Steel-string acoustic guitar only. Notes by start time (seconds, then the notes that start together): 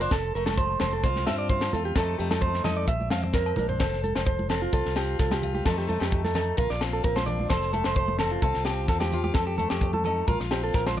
Already playing: F4
0.01 D4
0.12 F2 A4
0.36 A3
0.58 F3
0.82 C4
1.04 C3 F4
1.29 C4
1.51 F3
1.75 F4
1.96 F2 F3 A3 D#4 A4
2.20 A3
2.42 F3
2.66 D#4
2.88 A#2, muted steel-string acoustic guitar stroke
3.12 C4
3.35 F3
3.58 D4
3.80 F2 A4
4.27 F3
4.51 C4
4.73 C3 F4
4.96 C4
5.19 F3
5.43 F4
5.66 F2 F3 A3 D#4 A4
5.90 A3
6.12 F3
6.35 D#4
6.57 A#2 F4
6.82 C4
7.04 F3
7.28 D4
7.50 F2 A4
7.74 A3
7.96 F3
8.20 C4
8.43 C3 F4
8.67 C4
9.13 F4
9.35 F2 A4
9.59 A3
9.83 F3
10.06 D#4
10.28 A#2 F4
10.52 C4
10.73 F3